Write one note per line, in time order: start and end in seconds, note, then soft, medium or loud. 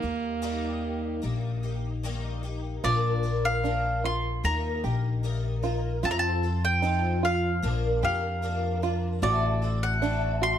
0.00 1.20 D#2 medium
0.00 2.00 A#3 medium
0.00 0.42 D#4 soft
0.00 0.42 G4 soft
0.04 0.41 A#3 soft
0.42 1.23 D#3 medium
0.42 1.21 G3 medium
0.42 1.21 A#3 medium
0.42 1.22 D#4 medium
0.42 1.23 G4 medium
1.22 2.80 A#1 medium
1.22 1.63 G3 medium
1.22 1.63 A#3 medium
1.22 1.63 D#4 medium
1.22 1.62 G4 medium
1.63 2.04 A#3 soft
1.63 2.04 D#4 soft
1.63 2.03 G4 medium
2.03 2.44 D#3 medium
2.03 2.44 G3 medium
2.03 2.44 A#3 medium
2.03 2.43 D#4 medium
2.03 2.42 G4 medium
2.43 2.83 A#3 soft
2.43 2.84 D#4 soft
2.43 2.83 G4 medium
2.84 4.40 A#1 medium
2.84 3.24 A#2 medium
2.84 3.24 D3 medium
2.84 3.24 F3 medium
2.84 3.24 A#3 medium
2.84 3.23 D4 medium
2.84 3.62 F4 medium
2.84 3.22 A#4 medium
2.84 3.46 D5 medium
3.23 3.62 F3 soft
3.23 3.63 A#3 soft
3.23 3.64 D4 medium
3.23 3.63 A#4 medium
3.45 4.05 F5 loud
3.64 4.44 F3 medium
3.64 4.43 A#3 medium
3.64 4.03 D4 medium
3.64 4.44 D4 medium
3.64 4.43 A#4 medium
4.04 4.82 F4 medium
4.04 4.42 C6 medium
4.44 4.82 D#2 medium
4.44 4.84 D#3 medium
4.44 4.84 G3 medium
4.44 4.84 A#3 medium
4.44 4.84 D#4 medium
4.44 4.83 A#4 medium
4.44 6.05 A#5 medium
4.84 5.99 A#1 medium
4.84 5.22 A#3 soft
4.84 5.23 D#4 soft
4.84 5.62 G4 medium
4.84 5.24 A#4 medium
5.23 5.63 G3 medium
5.23 5.63 A#3 medium
5.23 5.63 D#4 medium
5.23 5.62 A#4 medium
5.63 6.03 A#3 medium
5.63 6.03 D#4 medium
5.63 6.02 F4 medium
5.63 6.03 A#4 medium
6.03 7.59 F2 loud
6.03 6.43 F3 medium
6.03 6.43 C4 medium
6.03 6.81 F4 medium
6.03 6.43 F4 medium
6.03 6.42 A4 medium
6.03 6.10 A5 medium
6.11 6.18 A#5 medium
6.19 6.64 A5 medium
6.43 6.82 C4 soft
6.43 6.83 F4 soft
6.43 6.83 A4 medium
6.65 7.24 G5 medium
6.82 7.62 F3 medium
6.82 7.63 C4 medium
6.82 7.22 D#4 medium
6.82 7.63 F4 medium
6.82 7.63 A4 medium
7.23 8.01 F4 medium
7.23 8.03 F5 medium
7.63 8.01 A#1 medium
7.63 8.02 A#2 medium
7.63 8.02 D3 medium
7.63 8.03 F3 medium
7.63 8.02 A#3 medium
7.63 8.01 D4 medium
7.63 8.01 A#4 medium
8.02 9.18 F2 medium
8.02 8.41 F3 soft
8.02 8.41 A#3 soft
8.02 8.42 D4 soft
8.02 8.81 G4 medium
8.02 8.42 A#4 soft
8.02 8.79 F5 medium
8.42 8.82 F3 medium
8.42 8.82 A#3 medium
8.42 8.82 D4 medium
8.42 8.81 A#4 medium
8.82 9.22 F3 soft
8.82 9.22 A#3 soft
8.82 9.22 D4 medium
8.82 9.22 F4 medium
8.82 9.22 A#4 soft
9.22 10.59 A1 loud
9.22 9.62 A2 medium
9.22 9.62 D3 medium
9.22 9.62 A3 medium
9.22 9.62 C4 medium
9.22 10.00 F#4 medium
9.22 9.62 F#4 medium
9.22 9.61 A4 medium
9.22 9.84 D5 medium
9.62 10.01 A3 soft
9.62 10.01 C4 medium
9.62 10.02 F#4 soft
9.62 10.02 A4 medium
9.83 10.43 F#5 medium
10.02 10.59 A3 medium
10.02 10.59 C4 medium
10.02 10.41 D4 medium
10.02 10.59 F#4 medium
10.02 10.59 A4 medium
10.41 10.59 F#4 medium
10.41 10.59 C6 loud